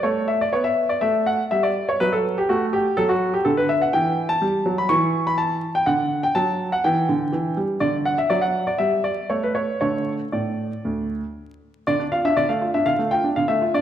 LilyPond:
<<
  \new Staff \with { instrumentName = "Grand piano" } { \time 4/4 \key d \major \tempo 4 = 122 cis''8 e''16 d''16 cis''16 e''8 d''16 e''8 fis''8 e''16 d''8 cis''16 | b'16 a'8 g'16 fis'8 g'8 a'16 fis'8 g'16 a'16 b'16 e''16 fis''16 | g''8. a''4 b''16 cis'''8. b''16 a''8. g''16 | fis''8. g''16 a''8. fis''16 g''4. r8 |
d''8 fis''16 e''16 d''16 fis''8 d''16 e''8 d''8 cis''16 b'16 cis''8 | cis''4 d''2~ d''8 r8 | \key d \minor d''8 f''16 e''16 d''16 f''8 e''16 f''8 g''8 f''16 e''8 d''16 | }
  \new Staff \with { instrumentName = "Grand piano" } { \clef bass \time 4/4 \key d \major a4 b4 a4 g4 | fis4 a4 fis4 d4 | e4 g8 fis8 e2 | d4 fis4 e8 d8 e8 g8 |
d4 fis4 g4 a4 | <d a a'>4 a,4 d,4 r4 | \key d \minor d16 d'16 f'16 d'16 d16 a16 f'16 d'16 d16 a16 f'16 d'16 d16 a16 f'16 d'16 | }
>>